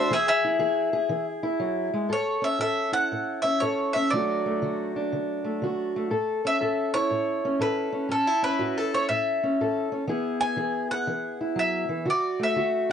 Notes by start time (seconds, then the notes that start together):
Already playing: A3 F#4 C5 E5
0.10 E3 G#4 E5
0.28 G#4 E5
0.44 E4
0.59 E3 G#4
0.93 G#4
1.09 E3
1.43 E4
1.60 F#3
1.94 G#3
2.09 A2 A4 C#5
2.42 C#4 E5
2.59 A2 A4 E5
2.92 E4 F#5
3.12 A2
3.42 C#4 E5
3.60 A2 A4 C#5
3.93 C#4 E5
4.10 D3 F#3 A3 D4 D5
4.15 F#4
4.46 A3
4.62 D3 F#4
4.96 D4
5.13 D3
5.44 A3
5.62 D3 F#4
5.96 A3
6.10 A2 A4
6.45 C#4 E5
6.61 A2 A4
6.94 E4 C#5
7.10 A2
7.45 C#4
7.59 A2 A4 B4
7.92 C#4
8.09 A2 C#4 A4
8.27 E4
8.42 C#4 B4
8.59 A2 F#4
8.78 A4
8.94 E4 C#5
9.09 A2 E5
9.43 C#4
9.61 A2 A4
9.92 C#4
10.07 E3 B3 E4 G#4
10.41 E4 G#5
10.56 E3 G#4
10.91 G#4 F#5
11.07 E3
11.41 E4
11.56 F#3 E5
11.89 E3
12.05 D3 F#4
12.10 D5
12.39 A3 E5
12.56 D3 F#4